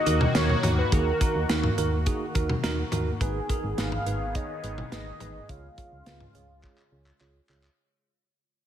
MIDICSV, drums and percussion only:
0, 0, Header, 1, 2, 480
1, 0, Start_track
1, 0, Tempo, 571429
1, 774, Time_signature, 4, 2, 24, 8
1, 7275, End_track
2, 0, Start_track
2, 0, Title_t, "Drums"
2, 54, Note_on_c, 9, 42, 70
2, 138, Note_off_c, 9, 42, 0
2, 175, Note_on_c, 9, 47, 88
2, 259, Note_off_c, 9, 47, 0
2, 293, Note_on_c, 9, 38, 109
2, 294, Note_on_c, 9, 42, 69
2, 377, Note_off_c, 9, 38, 0
2, 378, Note_off_c, 9, 42, 0
2, 416, Note_on_c, 9, 47, 64
2, 500, Note_off_c, 9, 47, 0
2, 532, Note_on_c, 9, 45, 90
2, 535, Note_on_c, 9, 42, 80
2, 616, Note_off_c, 9, 45, 0
2, 619, Note_off_c, 9, 42, 0
2, 774, Note_on_c, 9, 42, 82
2, 775, Note_on_c, 9, 36, 115
2, 858, Note_off_c, 9, 42, 0
2, 859, Note_off_c, 9, 36, 0
2, 1016, Note_on_c, 9, 36, 88
2, 1016, Note_on_c, 9, 42, 70
2, 1100, Note_off_c, 9, 36, 0
2, 1100, Note_off_c, 9, 42, 0
2, 1255, Note_on_c, 9, 42, 63
2, 1256, Note_on_c, 9, 38, 107
2, 1339, Note_off_c, 9, 42, 0
2, 1340, Note_off_c, 9, 38, 0
2, 1374, Note_on_c, 9, 45, 92
2, 1458, Note_off_c, 9, 45, 0
2, 1495, Note_on_c, 9, 42, 68
2, 1579, Note_off_c, 9, 42, 0
2, 1733, Note_on_c, 9, 42, 76
2, 1736, Note_on_c, 9, 36, 91
2, 1817, Note_off_c, 9, 42, 0
2, 1820, Note_off_c, 9, 36, 0
2, 1975, Note_on_c, 9, 42, 72
2, 1977, Note_on_c, 9, 36, 94
2, 2059, Note_off_c, 9, 42, 0
2, 2061, Note_off_c, 9, 36, 0
2, 2096, Note_on_c, 9, 47, 85
2, 2180, Note_off_c, 9, 47, 0
2, 2214, Note_on_c, 9, 38, 107
2, 2215, Note_on_c, 9, 42, 69
2, 2298, Note_off_c, 9, 38, 0
2, 2299, Note_off_c, 9, 42, 0
2, 2452, Note_on_c, 9, 45, 92
2, 2455, Note_on_c, 9, 42, 80
2, 2536, Note_off_c, 9, 45, 0
2, 2539, Note_off_c, 9, 42, 0
2, 2695, Note_on_c, 9, 36, 109
2, 2696, Note_on_c, 9, 42, 78
2, 2779, Note_off_c, 9, 36, 0
2, 2780, Note_off_c, 9, 42, 0
2, 2936, Note_on_c, 9, 36, 88
2, 2936, Note_on_c, 9, 42, 69
2, 3020, Note_off_c, 9, 36, 0
2, 3020, Note_off_c, 9, 42, 0
2, 3176, Note_on_c, 9, 42, 63
2, 3177, Note_on_c, 9, 38, 107
2, 3260, Note_off_c, 9, 42, 0
2, 3261, Note_off_c, 9, 38, 0
2, 3294, Note_on_c, 9, 45, 94
2, 3378, Note_off_c, 9, 45, 0
2, 3414, Note_on_c, 9, 42, 70
2, 3498, Note_off_c, 9, 42, 0
2, 3653, Note_on_c, 9, 42, 74
2, 3656, Note_on_c, 9, 36, 88
2, 3737, Note_off_c, 9, 42, 0
2, 3740, Note_off_c, 9, 36, 0
2, 3895, Note_on_c, 9, 42, 70
2, 3979, Note_off_c, 9, 42, 0
2, 4015, Note_on_c, 9, 47, 83
2, 4099, Note_off_c, 9, 47, 0
2, 4134, Note_on_c, 9, 38, 107
2, 4135, Note_on_c, 9, 42, 69
2, 4218, Note_off_c, 9, 38, 0
2, 4219, Note_off_c, 9, 42, 0
2, 4371, Note_on_c, 9, 45, 89
2, 4374, Note_on_c, 9, 42, 81
2, 4455, Note_off_c, 9, 45, 0
2, 4458, Note_off_c, 9, 42, 0
2, 4614, Note_on_c, 9, 36, 111
2, 4614, Note_on_c, 9, 42, 78
2, 4698, Note_off_c, 9, 36, 0
2, 4698, Note_off_c, 9, 42, 0
2, 4854, Note_on_c, 9, 36, 85
2, 4854, Note_on_c, 9, 42, 71
2, 4938, Note_off_c, 9, 36, 0
2, 4938, Note_off_c, 9, 42, 0
2, 5093, Note_on_c, 9, 42, 61
2, 5095, Note_on_c, 9, 38, 106
2, 5177, Note_off_c, 9, 42, 0
2, 5179, Note_off_c, 9, 38, 0
2, 5212, Note_on_c, 9, 45, 90
2, 5296, Note_off_c, 9, 45, 0
2, 5333, Note_on_c, 9, 42, 69
2, 5417, Note_off_c, 9, 42, 0
2, 5573, Note_on_c, 9, 39, 52
2, 5574, Note_on_c, 9, 36, 89
2, 5657, Note_off_c, 9, 39, 0
2, 5658, Note_off_c, 9, 36, 0
2, 5693, Note_on_c, 9, 39, 49
2, 5777, Note_off_c, 9, 39, 0
2, 5934, Note_on_c, 9, 39, 59
2, 6018, Note_off_c, 9, 39, 0
2, 6054, Note_on_c, 9, 39, 79
2, 6138, Note_off_c, 9, 39, 0
2, 6294, Note_on_c, 9, 39, 91
2, 6378, Note_off_c, 9, 39, 0
2, 6414, Note_on_c, 9, 39, 80
2, 6498, Note_off_c, 9, 39, 0
2, 7275, End_track
0, 0, End_of_file